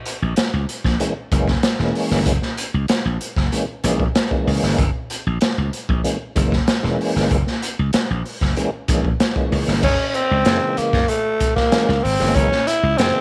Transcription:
0.06 closed hi-hat medium
0.22 0.33 A#1 medium
0.36 snare loud
0.36 closed hi-hat medium
0.53 0.65 C#2 loud
0.69 closed hi-hat medium
0.85 0.96 A#1 medium
0.85 kick medium
0.85 snare soft
1.00 1.14 E3 medium
1.00 1.14 G#3 medium
1.00 1.14 A#3 medium
1.00 1.14 C#4 loud
1.00 closed hi-hat medium
1.32 1.55 F#1 medium
1.32 1.52 E3 medium
1.32 1.52 G#3 medium
1.32 1.52 A#3 medium
1.32 1.52 C#4 loud
1.32 kick medium
1.32 closed hi-hat medium
1.48 kick medium
1.48 snare soft
1.63 muted slap bass stroke soft
1.63 snare loud
1.63 closed hi-hat medium
1.79 1.91 E1 medium
1.79 2.33 E3 medium
1.79 2.33 G#3 medium
1.79 2.33 A#3 medium
1.79 2.33 C#4 loud
1.79 snare soft
1.95 open hi-hat medium
2.11 2.26 G1 medium
2.11 snare soft
2.26 2.38 F#1 loud
2.26 kick loud
2.26 closed hi-hat medium
2.42 snare soft
2.57 closed hi-hat medium
2.74 2.85 C#2 medium
2.88 snare loud
2.88 closed hi-hat medium
3.05 3.17 A#1 loud
3.21 closed hi-hat medium
3.37 3.48 F#1 medium
3.37 kick loud
3.37 snare soft
3.52 3.66 E3 medium
3.52 3.66 G#3 medium
3.52 3.66 A#3 medium
3.52 3.66 C#4 loud
3.52 closed hi-hat medium
3.83 4.07 A#1 medium
3.83 4.04 E3 medium
3.83 4.04 G#3 medium
3.83 4.04 A#3 medium
3.83 4.04 C#4 loud
3.83 closed hi-hat medium
4.00 kick medium
4.15 snare loud
4.15 closed hi-hat medium
4.30 4.85 E3 medium
4.30 4.85 G#3 medium
4.30 4.85 A#3 medium
4.30 4.85 C#4 loud
4.30 kick medium
4.47 4.58 C#2 medium
4.47 open hi-hat medium
4.63 4.74 G1 loud
4.63 snare soft
4.78 4.90 F#1 loud
4.78 kick loud
4.78 closed hi-hat medium
5.10 closed hi-hat medium
5.27 5.38 A#1 medium
5.41 snare loud
5.41 closed hi-hat medium
5.58 5.69 C#2 medium
5.73 closed hi-hat medium
5.89 6.01 A#1 medium
5.89 kick loud
6.04 6.18 E3 medium
6.04 6.18 G#3 medium
6.04 6.18 A#3 medium
6.04 6.18 C#4 loud
6.04 closed hi-hat medium
6.35 6.59 F#1 medium
6.35 6.56 E3 medium
6.35 6.56 G#3 medium
6.35 6.56 A#3 medium
6.35 6.56 C#4 medium
6.35 kick loud
6.35 closed hi-hat medium
6.52 kick medium
6.52 snare soft
6.68 muted slap bass stroke soft
6.68 snare loud
6.68 closed hi-hat medium
6.83 6.95 E1 loud
6.83 7.37 E3 loud
6.83 7.37 G#3 medium
6.83 7.37 A#3 medium
6.83 7.37 C#4 loud
6.83 snare soft
7.01 open hi-hat medium
7.16 7.27 G1 medium
7.16 snare soft
7.31 7.42 F#1 loud
7.31 kick loud
7.31 closed hi-hat medium
7.47 snare soft
7.62 closed hi-hat medium
7.79 7.90 C#2 medium
7.93 muted slap bass stroke medium
7.93 snare loud
7.93 closed hi-hat medium
8.10 8.22 A#1 medium
8.26 open hi-hat soft
8.41 8.53 F#1 medium
8.41 kick medium
8.41 snare soft
8.57 8.70 E3 medium
8.57 8.71 G#3 medium
8.57 8.71 A#3 medium
8.57 8.71 C#4 loud
8.57 closed hi-hat medium
8.88 9.11 A#1 medium
8.88 9.09 E3 medium
8.88 9.09 G#3 medium
8.88 9.09 A#3 medium
8.88 9.09 C#4 medium
8.88 kick loud
8.88 closed hi-hat medium
9.05 kick medium
9.20 snare loud
9.20 closed hi-hat medium
9.36 9.83 E3 medium
9.36 9.83 G#3 medium
9.36 9.83 A#3 medium
9.36 9.83 C#4 loud
9.36 kick loud
9.52 9.63 C#2 loud
9.52 open hi-hat medium
9.68 9.79 G1 medium
9.68 snare soft
9.83 9.95 F#1 medium
9.83 10.08 C#4 medium
9.83 kick loud
9.83 crash medium
10.08 10.17 C#4 medium
10.14 10.79 C4 medium
10.14 closed hi-hat medium
10.31 10.42 C#2 medium
10.45 10.58 F#2 loud
10.45 11.00 C#3 medium
10.45 11.00 E3 medium
10.45 11.00 G#3 medium
10.45 11.00 A#3 medium
10.45 snare loud
10.45 closed hi-hat medium
10.77 11.11 A#3 medium
10.77 muted slap bass stroke soft
10.77 closed hi-hat medium
10.93 11.05 F#2 loud
10.93 kick loud
10.93 snare soft
11.08 11.55 A3 medium
11.08 closed hi-hat medium
11.40 kick medium
11.40 closed hi-hat medium
11.56 12.05 A#3 medium
11.56 kick medium
11.56 snare soft
11.72 11.93 E3 medium
11.72 11.93 G#3 medium
11.72 11.93 A#3 medium
11.72 11.93 C#4 medium
11.72 snare loud
11.72 closed hi-hat medium
11.89 12.00 C#2 medium
11.89 snare soft
12.03 12.16 G#1 medium
12.03 12.37 C4 medium
12.03 open hi-hat medium
12.19 12.32 G1 medium
12.19 12.53 E3 medium
12.19 12.53 G#3 medium
12.19 12.54 A#3 medium
12.19 12.54 C#4 loud
12.19 snare soft
12.35 12.47 F#1 loud
12.35 12.68 C#4 loud
12.35 kick loud
12.35 closed hi-hat medium
12.52 snare soft
12.67 12.99 E4 medium
12.67 closed hi-hat medium
12.83 12.95 C#2 loud
12.97 13.11 F#2 loud
12.97 13.21 C#3 medium
12.97 13.21 E3 medium
12.97 13.21 G#3 medium
12.97 13.21 A#3 medium
12.97 13.21 C4 loud
12.97 snare loud
12.97 closed hi-hat medium

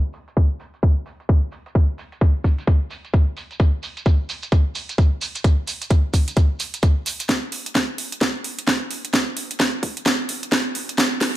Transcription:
0.13 open hi-hat loud
0.13 shekere medium
0.28 closed hi-hat medium
0.28 shekere medium
0.37 kick loud
0.37 closed hi-hat soft
0.37 shekere soft
0.60 open hi-hat loud
0.60 shekere medium
0.74 closed hi-hat medium
0.74 shekere soft
0.82 kick loud
0.82 closed hi-hat soft
0.82 shekere soft
1.06 open hi-hat loud
1.06 shekere medium
1.20 closed hi-hat medium
1.20 shekere medium
1.29 kick loud
1.29 closed hi-hat soft
1.29 shekere soft
1.52 open hi-hat loud
1.52 shekere medium
1.66 closed hi-hat medium
1.66 shekere medium
1.75 kick loud
1.75 closed hi-hat soft
1.75 shekere soft
1.98 open hi-hat loud
1.98 shekere medium
2.12 closed hi-hat medium
2.12 shekere medium
2.21 kick loud
2.21 closed hi-hat soft
2.21 shekere soft
2.44 kick medium
2.44 open hi-hat medium
2.44 shekere medium
2.58 closed hi-hat medium
2.58 shekere medium
2.67 kick loud
2.67 closed hi-hat soft
2.67 shekere soft
2.91 open hi-hat loud
2.91 shekere medium
3.05 closed hi-hat medium
3.05 shekere soft
3.13 kick loud
3.13 closed hi-hat soft
3.13 shekere soft
3.37 open hi-hat loud
3.37 shekere medium
3.51 closed hi-hat medium
3.51 shekere medium
3.60 kick loud
3.60 closed hi-hat medium
3.60 shekere soft
3.83 open hi-hat loud
3.83 shekere medium
3.97 closed hi-hat medium
3.97 shekere soft
4.06 kick loud
4.06 closed hi-hat medium
4.06 shekere soft
4.29 open hi-hat medium
4.29 shekere medium
4.42 closed hi-hat medium
4.42 shekere soft
4.52 kick loud
4.52 closed hi-hat medium
4.52 shekere soft
4.75 open hi-hat loud
4.75 shekere medium
4.89 closed hi-hat medium
4.89 shekere soft
4.98 kick loud
4.98 closed hi-hat medium
4.98 shekere soft
5.21 open hi-hat medium
5.21 shekere medium
5.36 closed hi-hat medium
5.36 shekere soft
5.44 kick loud
5.44 closed hi-hat medium
5.44 shekere soft
5.67 open hi-hat loud
5.67 shekere medium
5.81 closed hi-hat medium
5.81 shekere soft
5.90 kick loud
5.90 closed hi-hat medium
5.90 shekere soft
6.14 kick medium
6.14 open hi-hat medium
6.14 shekere medium
6.28 closed hi-hat medium
6.28 shekere soft
6.36 kick loud
6.36 closed hi-hat medium
6.36 shekere soft
6.60 open hi-hat medium
6.60 shekere medium
6.74 closed hi-hat medium
6.74 shekere soft
6.82 kick loud
6.82 closed hi-hat medium
6.82 shekere soft
7.06 open hi-hat loud
7.06 shekere medium
7.20 closed hi-hat medium
7.20 shekere soft
7.29 kick loud
7.29 snare soft
7.29 closed hi-hat medium
7.52 open hi-hat loud
7.66 closed hi-hat medium
7.75 kick loud
7.75 snare soft
7.75 closed hi-hat medium
7.98 open hi-hat loud
8.12 closed hi-hat medium
8.21 kick loud
8.21 snare medium
8.21 closed hi-hat medium
8.44 open hi-hat loud
8.59 closed hi-hat medium
8.67 kick loud
8.67 snare medium
8.67 closed hi-hat medium
8.91 open hi-hat loud
9.05 closed hi-hat medium
9.14 kick loud
9.14 snare medium
9.14 closed hi-hat medium
9.37 open hi-hat loud
9.51 closed hi-hat medium
9.60 kick loud
9.60 snare medium
9.60 closed hi-hat medium
9.83 kick medium
9.83 open hi-hat loud
9.97 closed hi-hat medium
10.06 kick loud
10.06 snare medium
10.06 closed hi-hat medium
10.29 open hi-hat loud
10.43 closed hi-hat medium
10.52 kick loud
10.52 snare medium
10.52 closed hi-hat medium
10.75 open hi-hat loud
10.89 closed hi-hat medium
10.98 kick loud
10.98 snare medium
10.98 closed hi-hat medium
11.21 snare medium
11.21 open hi-hat loud

